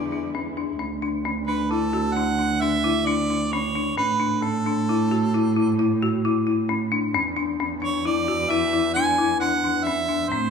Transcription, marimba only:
0.12 0.29 D4 soft
0.35 0.51 C#4 medium
0.57 0.74 D4 medium
0.79 0.96 C#4 medium
1.02 1.19 D4 medium
1.25 1.42 C#4 medium
1.48 1.64 D4 medium
1.71 1.87 E4 medium
1.93 2.10 F#4 medium
2.16 2.33 D4 medium
2.39 2.55 D4 medium
2.62 2.78 D4 medium
2.84 3.00 E4 medium
3.07 3.23 D4 medium
3.30 3.46 D4 medium
3.53 3.69 C#4 medium
3.75 3.92 D4 medium
3.98 4.14 C#4 medium
4.20 4.36 D4 medium
4.43 4.59 C#4 medium
4.66 4.82 D4 medium
4.89 5.05 E4 medium
5.11 5.28 F#4 medium
5.34 5.51 E4 medium
5.56 5.73 E4 medium
5.79 5.96 E4 medium
6.03 6.19 F#4 medium
6.25 6.41 E4 medium
6.47 6.63 E4 medium
6.69 6.86 C#4 medium
6.92 7.08 D4 medium
7.14 7.31 C#4 medium
7.37 7.53 D4 medium
7.60 7.76 C#4 medium
7.82 7.99 D4 medium
8.05 8.22 E4 medium
8.28 8.45 F#4 medium
8.51 8.67 E4 medium
8.73 8.90 E4 medium
8.96 9.13 D4 medium
9.18 9.35 E4 medium
9.41 9.58 D4 medium
9.64 9.81 D4 medium
9.87 10.03 C#4 medium
10.09 10.25 D4 medium
10.32 10.48 C4 medium

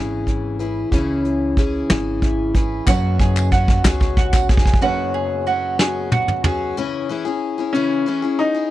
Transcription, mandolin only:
2.87 3.19 F#4 medium
3.20 3.51 G#4 medium
3.52 3.84 F#4 medium
3.85 4.17 G#4 medium
4.17 4.49 F#4 medium
4.49 4.82 G#4 medium
4.82 5.14 F#4 medium
5.14 5.46 G#4 medium
5.47 5.79 F#4 medium
5.79 6.11 G#4 medium
6.12 6.44 F#4 medium
6.44 6.76 G#4 medium

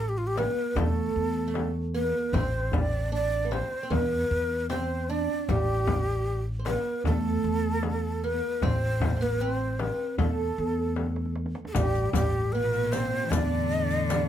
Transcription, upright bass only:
0.00 0.46 A1 medium
0.77 1.09 E2 medium
1.16 2.11 E2 medium
2.33 3.60 A1 medium
3.90 4.23 E2 medium
4.31 5.26 E2 medium
5.49 6.75 A1 loud
7.06 7.37 E2 medium
7.44 8.39 E2 medium
8.63 9.89 A1 loud
10.19 10.51 E2 medium
10.58 11.53 E2 medium
11.75 12.07 A1 medium
12.15 13.09 A1 medium
13.32 14.28 E2 medium

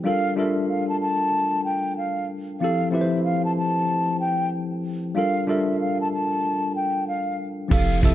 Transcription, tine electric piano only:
0.04 0.29 G3 medium
0.04 0.30 D4 medium
0.04 0.30 F4 medium
0.04 0.31 A4 medium
0.04 0.31 A#4 medium
0.36 1.28 G3 medium
0.36 1.28 D4 medium
0.36 1.29 F4 medium
0.36 1.29 A4 medium
0.36 1.30 A#4 medium
2.60 2.85 F3 medium
2.60 2.86 C4 medium
2.60 2.86 E4 medium
2.60 2.87 G4 medium
2.60 2.87 A4 medium
2.91 3.83 F3 medium
2.91 3.84 C4 medium
2.91 3.84 E4 medium
2.91 3.85 G4 medium
2.91 3.02 B4 medium
3.01 3.88 C5 medium
5.15 5.40 G3 medium
5.15 5.41 D4 medium
5.15 5.41 F4 medium
5.15 5.42 A4 medium
5.15 5.42 A#4 medium
5.47 6.39 G3 medium
5.47 6.39 D4 medium
5.47 6.40 F4 medium
5.47 6.40 A4 medium
5.47 6.41 A#4 medium
7.68 7.95 F3 medium
7.68 7.95 C4 medium
7.68 7.96 E4 medium
7.68 7.96 G4 medium
7.68 7.97 A4 medium
8.02 8.15 F3 medium
8.02 8.15 C4 medium
8.02 8.15 E4 medium
8.02 8.15 G4 medium
8.02 8.15 A4 medium

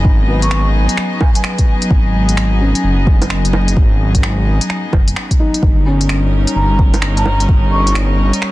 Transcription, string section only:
0.00 5.63 F#3 medium
0.00 5.63 B3 medium
0.00 5.63 D#4 medium
0.00 5.63 G#4 medium
0.00 5.63 D#5 medium
5.62 8.52 G3 medium
5.71 8.52 C#4 medium
5.71 8.52 D#4 medium
5.96 8.52 A#4 medium
6.65 8.52 D#5 medium

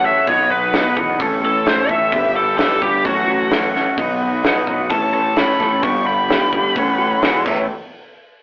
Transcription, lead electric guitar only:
0.05 0.28 E5 medium
0.28 0.50 C#5 loud
0.51 0.96 B4 loud
1.45 1.67 A4 medium
1.67 1.90 C5 medium
1.90 2.35 E5 medium
2.36 2.57 A4 medium
2.58 2.81 A4 medium
2.82 3.05 G4 medium
3.05 3.50 F#4 loud
4.90 5.13 A5 loud
5.14 5.36 A5 medium
5.37 5.82 B5 medium
5.83 6.06 C#6 loud
6.07 7.42 B5 loud

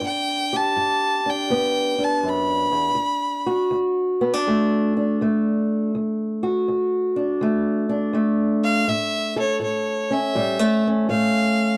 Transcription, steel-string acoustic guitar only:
0.00 0.71 G2 medium
0.00 1.26 D4 medium
0.53 2.96 G4 medium
0.77 1.45 G2 medium
1.26 1.98 D4 medium
1.50 2.19 G2 medium
1.50 2.95 B3 medium
1.98 4.21 D4 medium
2.23 2.71 F#2 medium
2.71 2.94 E2 medium
2.95 3.65 D2 medium
3.46 5.89 F#4 medium
3.71 4.40 D2 medium
4.21 4.34 B3 medium
4.34 4.94 D4 medium
4.47 5.15 D2 medium
4.47 5.22 A3 medium
4.97 5.91 D4 medium
5.21 5.89 D2 medium
5.21 7.42 A3 medium
5.95 6.62 D2 medium
6.43 8.85 F#4 medium
6.68 7.36 D2 medium
7.16 7.88 D4 medium
7.41 8.09 D2 medium
7.41 8.14 A3 medium
7.89 8.84 D4 medium
8.13 8.82 D2 medium
8.13 10.35 A3 medium
8.88 9.56 A2 medium
9.36 11.77 A4 medium
9.60 10.29 A2 medium
10.11 10.83 C#4 medium
10.35 11.03 A2 medium
10.35 10.59 G3 medium
10.59 11.08 A3 soft
10.87 11.77 C#4 medium
11.09 11.77 A2 medium
11.09 11.77 A3 medium

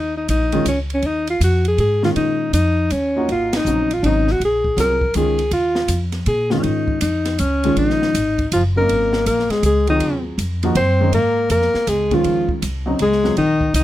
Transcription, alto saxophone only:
0.00 0.17 D#4 medium
0.17 0.29 D#4 medium
0.30 0.64 D#4 medium
0.68 0.79 C#4 medium
0.94 1.08 C#4 medium
1.06 1.29 D#4 medium
1.30 1.42 F4 medium
1.44 1.65 F#4 medium
1.68 1.79 G#4 medium
1.80 2.02 G#4 medium
2.05 2.10 F4 medium
2.16 2.51 D#4 medium
2.54 2.94 D#4 medium
2.93 3.29 C#4 medium
3.32 3.58 F4 medium
3.56 3.95 D#4 medium
3.93 4.01 F4 medium
4.03 4.07 D4 medium
4.03 4.33 D#4 medium
4.31 4.43 F#4 medium
4.45 4.78 G#4 medium
4.80 5.14 A#4 medium
5.17 5.51 G#4 medium
5.53 6.00 F4 medium
6.28 6.53 G#4 medium
6.51 6.59 F4 medium
6.59 6.65 C#4 medium
6.64 7.01 D#4 medium
7.01 7.41 D#4 medium
7.40 7.77 C#4 medium
7.78 8.48 D#4 medium
8.53 8.64 F4 medium
8.77 9.24 A#4 medium
9.27 9.53 A#4 medium
9.51 9.64 G#4 medium
9.66 9.87 G#4 medium
9.90 10.24 D#4 medium
10.77 11.11 C5 loud
11.14 11.49 A#4 loud
11.51 11.90 A#4 loud
11.89 12.16 G#4 medium
12.14 12.51 F4 medium
13.02 13.36 G#4 medium
13.38 13.72 D#4 medium
13.75 13.84 D#4 medium

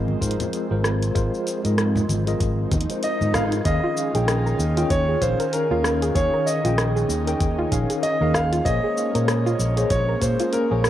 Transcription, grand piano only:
3.04 3.35 D#5 loud
3.34 3.41 F5 loud
3.65 4.94 D#5 loud
4.90 5.23 C#5 loud
5.22 5.51 C5 medium
5.53 6.11 A#4 medium
6.15 6.47 C#5 loud
6.46 7.67 D#5 medium
8.03 8.32 D#5 loud
8.34 8.66 F5 loud
8.65 9.94 D#5 loud
9.90 10.23 C#5 loud
10.22 10.54 C5 medium
10.53 10.90 A#4 medium

